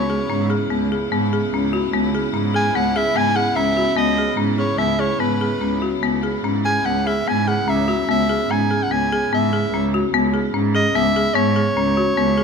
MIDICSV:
0, 0, Header, 1, 5, 480
1, 0, Start_track
1, 0, Key_signature, 4, "minor"
1, 0, Tempo, 409556
1, 2267, Time_signature, 5, 2, 24, 8
1, 14576, End_track
2, 0, Start_track
2, 0, Title_t, "Soprano saxophone"
2, 0, Program_c, 0, 64
2, 0, Note_on_c, 0, 73, 74
2, 589, Note_off_c, 0, 73, 0
2, 2996, Note_on_c, 0, 80, 90
2, 3228, Note_on_c, 0, 78, 85
2, 3246, Note_off_c, 0, 80, 0
2, 3476, Note_on_c, 0, 76, 87
2, 3494, Note_off_c, 0, 78, 0
2, 3713, Note_on_c, 0, 80, 97
2, 3730, Note_off_c, 0, 76, 0
2, 3937, Note_on_c, 0, 78, 86
2, 3954, Note_off_c, 0, 80, 0
2, 4169, Note_on_c, 0, 76, 84
2, 4187, Note_off_c, 0, 78, 0
2, 4646, Note_off_c, 0, 76, 0
2, 4653, Note_on_c, 0, 75, 81
2, 5096, Note_off_c, 0, 75, 0
2, 5377, Note_on_c, 0, 73, 74
2, 5602, Note_on_c, 0, 76, 81
2, 5619, Note_off_c, 0, 73, 0
2, 5859, Note_on_c, 0, 73, 76
2, 5877, Note_off_c, 0, 76, 0
2, 6093, Note_on_c, 0, 71, 64
2, 6110, Note_off_c, 0, 73, 0
2, 6824, Note_off_c, 0, 71, 0
2, 7794, Note_on_c, 0, 80, 87
2, 8033, Note_on_c, 0, 78, 79
2, 8051, Note_off_c, 0, 80, 0
2, 8280, Note_on_c, 0, 76, 77
2, 8298, Note_off_c, 0, 78, 0
2, 8535, Note_on_c, 0, 80, 87
2, 8552, Note_off_c, 0, 76, 0
2, 8766, Note_on_c, 0, 78, 80
2, 8783, Note_off_c, 0, 80, 0
2, 9015, Note_on_c, 0, 76, 83
2, 9032, Note_off_c, 0, 78, 0
2, 9492, Note_off_c, 0, 76, 0
2, 9500, Note_on_c, 0, 76, 81
2, 9974, Note_on_c, 0, 80, 90
2, 9991, Note_off_c, 0, 76, 0
2, 10348, Note_on_c, 0, 78, 80
2, 10365, Note_off_c, 0, 80, 0
2, 10455, Note_on_c, 0, 80, 83
2, 10472, Note_off_c, 0, 78, 0
2, 10932, Note_off_c, 0, 80, 0
2, 10948, Note_on_c, 0, 76, 67
2, 11608, Note_off_c, 0, 76, 0
2, 12601, Note_on_c, 0, 75, 93
2, 12839, Note_on_c, 0, 76, 97
2, 12856, Note_off_c, 0, 75, 0
2, 13293, Note_on_c, 0, 73, 83
2, 13311, Note_off_c, 0, 76, 0
2, 14576, Note_off_c, 0, 73, 0
2, 14576, End_track
3, 0, Start_track
3, 0, Title_t, "Marimba"
3, 0, Program_c, 1, 12
3, 114, Note_on_c, 1, 68, 60
3, 291, Note_off_c, 1, 68, 0
3, 347, Note_on_c, 1, 61, 71
3, 527, Note_off_c, 1, 61, 0
3, 585, Note_on_c, 1, 68, 68
3, 766, Note_off_c, 1, 68, 0
3, 825, Note_on_c, 1, 59, 70
3, 1007, Note_off_c, 1, 59, 0
3, 1077, Note_on_c, 1, 68, 71
3, 1254, Note_off_c, 1, 68, 0
3, 1311, Note_on_c, 1, 59, 79
3, 1490, Note_off_c, 1, 59, 0
3, 1559, Note_on_c, 1, 68, 70
3, 1734, Note_off_c, 1, 68, 0
3, 1803, Note_on_c, 1, 61, 74
3, 1976, Note_off_c, 1, 61, 0
3, 2027, Note_on_c, 1, 66, 72
3, 2206, Note_off_c, 1, 66, 0
3, 2265, Note_on_c, 1, 59, 86
3, 2444, Note_off_c, 1, 59, 0
3, 2516, Note_on_c, 1, 68, 72
3, 2690, Note_off_c, 1, 68, 0
3, 2739, Note_on_c, 1, 61, 69
3, 2919, Note_off_c, 1, 61, 0
3, 2983, Note_on_c, 1, 68, 72
3, 3162, Note_off_c, 1, 68, 0
3, 3227, Note_on_c, 1, 59, 77
3, 3403, Note_off_c, 1, 59, 0
3, 3468, Note_on_c, 1, 68, 74
3, 3643, Note_off_c, 1, 68, 0
3, 3700, Note_on_c, 1, 59, 88
3, 3877, Note_off_c, 1, 59, 0
3, 3935, Note_on_c, 1, 68, 69
3, 4115, Note_off_c, 1, 68, 0
3, 4178, Note_on_c, 1, 61, 74
3, 4356, Note_off_c, 1, 61, 0
3, 4416, Note_on_c, 1, 66, 71
3, 4594, Note_off_c, 1, 66, 0
3, 4648, Note_on_c, 1, 59, 88
3, 4828, Note_off_c, 1, 59, 0
3, 4902, Note_on_c, 1, 68, 61
3, 5077, Note_off_c, 1, 68, 0
3, 5123, Note_on_c, 1, 61, 68
3, 5305, Note_off_c, 1, 61, 0
3, 5370, Note_on_c, 1, 68, 63
3, 5550, Note_off_c, 1, 68, 0
3, 5606, Note_on_c, 1, 59, 72
3, 5788, Note_off_c, 1, 59, 0
3, 5850, Note_on_c, 1, 68, 64
3, 6032, Note_off_c, 1, 68, 0
3, 6097, Note_on_c, 1, 59, 75
3, 6278, Note_off_c, 1, 59, 0
3, 6343, Note_on_c, 1, 68, 64
3, 6523, Note_off_c, 1, 68, 0
3, 6578, Note_on_c, 1, 61, 68
3, 6762, Note_off_c, 1, 61, 0
3, 6820, Note_on_c, 1, 66, 66
3, 7004, Note_off_c, 1, 66, 0
3, 7064, Note_on_c, 1, 59, 78
3, 7246, Note_off_c, 1, 59, 0
3, 7305, Note_on_c, 1, 68, 62
3, 7487, Note_off_c, 1, 68, 0
3, 7550, Note_on_c, 1, 61, 69
3, 7732, Note_off_c, 1, 61, 0
3, 7801, Note_on_c, 1, 68, 61
3, 7980, Note_off_c, 1, 68, 0
3, 8038, Note_on_c, 1, 59, 69
3, 8219, Note_off_c, 1, 59, 0
3, 8285, Note_on_c, 1, 68, 69
3, 8464, Note_off_c, 1, 68, 0
3, 8527, Note_on_c, 1, 59, 77
3, 8706, Note_off_c, 1, 59, 0
3, 8761, Note_on_c, 1, 68, 66
3, 8943, Note_off_c, 1, 68, 0
3, 8999, Note_on_c, 1, 61, 71
3, 9181, Note_off_c, 1, 61, 0
3, 9236, Note_on_c, 1, 66, 69
3, 9420, Note_off_c, 1, 66, 0
3, 9477, Note_on_c, 1, 59, 87
3, 9661, Note_off_c, 1, 59, 0
3, 9720, Note_on_c, 1, 68, 65
3, 9902, Note_off_c, 1, 68, 0
3, 9971, Note_on_c, 1, 61, 75
3, 10149, Note_off_c, 1, 61, 0
3, 10205, Note_on_c, 1, 68, 68
3, 10386, Note_off_c, 1, 68, 0
3, 10445, Note_on_c, 1, 59, 67
3, 10626, Note_off_c, 1, 59, 0
3, 10696, Note_on_c, 1, 68, 80
3, 10872, Note_off_c, 1, 68, 0
3, 10932, Note_on_c, 1, 59, 87
3, 11109, Note_off_c, 1, 59, 0
3, 11169, Note_on_c, 1, 68, 76
3, 11347, Note_off_c, 1, 68, 0
3, 11413, Note_on_c, 1, 61, 72
3, 11589, Note_off_c, 1, 61, 0
3, 11651, Note_on_c, 1, 66, 78
3, 11828, Note_off_c, 1, 66, 0
3, 11881, Note_on_c, 1, 59, 90
3, 12061, Note_off_c, 1, 59, 0
3, 12114, Note_on_c, 1, 68, 67
3, 12296, Note_off_c, 1, 68, 0
3, 12353, Note_on_c, 1, 61, 78
3, 12534, Note_off_c, 1, 61, 0
3, 12595, Note_on_c, 1, 68, 71
3, 12775, Note_off_c, 1, 68, 0
3, 12839, Note_on_c, 1, 59, 81
3, 13017, Note_off_c, 1, 59, 0
3, 13084, Note_on_c, 1, 68, 76
3, 13258, Note_off_c, 1, 68, 0
3, 13308, Note_on_c, 1, 59, 92
3, 13488, Note_off_c, 1, 59, 0
3, 13550, Note_on_c, 1, 68, 72
3, 13730, Note_off_c, 1, 68, 0
3, 13793, Note_on_c, 1, 61, 73
3, 13971, Note_off_c, 1, 61, 0
3, 14031, Note_on_c, 1, 66, 73
3, 14208, Note_off_c, 1, 66, 0
3, 14270, Note_on_c, 1, 59, 84
3, 14447, Note_off_c, 1, 59, 0
3, 14505, Note_on_c, 1, 68, 65
3, 14576, Note_off_c, 1, 68, 0
3, 14576, End_track
4, 0, Start_track
4, 0, Title_t, "String section"
4, 0, Program_c, 2, 48
4, 0, Note_on_c, 2, 49, 65
4, 0, Note_on_c, 2, 59, 58
4, 0, Note_on_c, 2, 64, 74
4, 14576, Note_off_c, 2, 49, 0
4, 14576, Note_off_c, 2, 59, 0
4, 14576, Note_off_c, 2, 64, 0
4, 14576, End_track
5, 0, Start_track
5, 0, Title_t, "Cello"
5, 0, Program_c, 3, 42
5, 0, Note_on_c, 3, 37, 78
5, 280, Note_off_c, 3, 37, 0
5, 351, Note_on_c, 3, 44, 86
5, 764, Note_off_c, 3, 44, 0
5, 833, Note_on_c, 3, 37, 82
5, 1245, Note_off_c, 3, 37, 0
5, 1310, Note_on_c, 3, 44, 82
5, 1722, Note_off_c, 3, 44, 0
5, 1790, Note_on_c, 3, 37, 84
5, 2200, Note_off_c, 3, 37, 0
5, 2260, Note_on_c, 3, 37, 92
5, 2673, Note_off_c, 3, 37, 0
5, 2737, Note_on_c, 3, 44, 87
5, 3151, Note_off_c, 3, 44, 0
5, 3222, Note_on_c, 3, 37, 88
5, 3632, Note_off_c, 3, 37, 0
5, 3694, Note_on_c, 3, 44, 76
5, 4106, Note_off_c, 3, 44, 0
5, 4165, Note_on_c, 3, 37, 81
5, 4581, Note_off_c, 3, 37, 0
5, 4642, Note_on_c, 3, 37, 86
5, 5057, Note_off_c, 3, 37, 0
5, 5128, Note_on_c, 3, 44, 79
5, 5542, Note_off_c, 3, 44, 0
5, 5599, Note_on_c, 3, 37, 79
5, 6020, Note_off_c, 3, 37, 0
5, 6084, Note_on_c, 3, 44, 76
5, 6507, Note_off_c, 3, 44, 0
5, 6568, Note_on_c, 3, 37, 75
5, 6992, Note_off_c, 3, 37, 0
5, 7062, Note_on_c, 3, 37, 84
5, 7480, Note_off_c, 3, 37, 0
5, 7537, Note_on_c, 3, 44, 76
5, 7960, Note_off_c, 3, 44, 0
5, 8027, Note_on_c, 3, 37, 85
5, 8448, Note_off_c, 3, 37, 0
5, 8521, Note_on_c, 3, 44, 82
5, 8937, Note_off_c, 3, 44, 0
5, 8987, Note_on_c, 3, 37, 88
5, 9410, Note_off_c, 3, 37, 0
5, 9479, Note_on_c, 3, 37, 82
5, 9895, Note_off_c, 3, 37, 0
5, 9949, Note_on_c, 3, 44, 79
5, 10370, Note_off_c, 3, 44, 0
5, 10433, Note_on_c, 3, 37, 79
5, 10852, Note_off_c, 3, 37, 0
5, 10911, Note_on_c, 3, 44, 80
5, 11329, Note_off_c, 3, 44, 0
5, 11391, Note_on_c, 3, 37, 88
5, 11808, Note_off_c, 3, 37, 0
5, 11867, Note_on_c, 3, 37, 92
5, 12284, Note_off_c, 3, 37, 0
5, 12349, Note_on_c, 3, 44, 92
5, 12764, Note_off_c, 3, 44, 0
5, 12829, Note_on_c, 3, 37, 85
5, 13242, Note_off_c, 3, 37, 0
5, 13311, Note_on_c, 3, 44, 85
5, 13723, Note_off_c, 3, 44, 0
5, 13792, Note_on_c, 3, 37, 86
5, 14202, Note_off_c, 3, 37, 0
5, 14272, Note_on_c, 3, 37, 90
5, 14576, Note_off_c, 3, 37, 0
5, 14576, End_track
0, 0, End_of_file